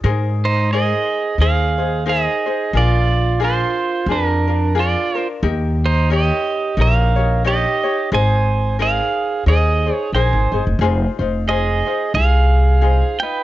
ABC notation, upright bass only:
X:1
M:4/4
L:1/16
Q:"Swing" 1/4=89
K:Ab
V:1 name="Upright bass" clef=bass
A,,8 E,,8 | B,,,8 F,,8 | E,,8 B,,,8 | A,,,8 E,,4 B,,, A,,, G,,, F,,, |
[K:Fm] F,,,2 F,,,6 C,,8 |]